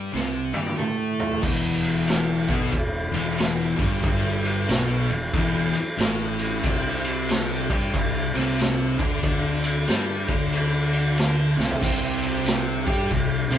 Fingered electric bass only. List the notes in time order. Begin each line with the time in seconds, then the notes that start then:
0.14 C2
0.55 G2
0.79 A2
1.43 E1
2.49 B1
2.73 E1
3.14 E1
3.79 G1
4.69 B1
5.10 E1
5.34 E1
5.75 muted fingered electric bass stroke
5.99 A1
6.64 C2
7.70 G2
7.94 C2
8.36 C2
8.99 D2
9.89 G2
10.29 D2
11.59 C2
11.82 C2
12.87 G2
13.11 C2
13.50 C2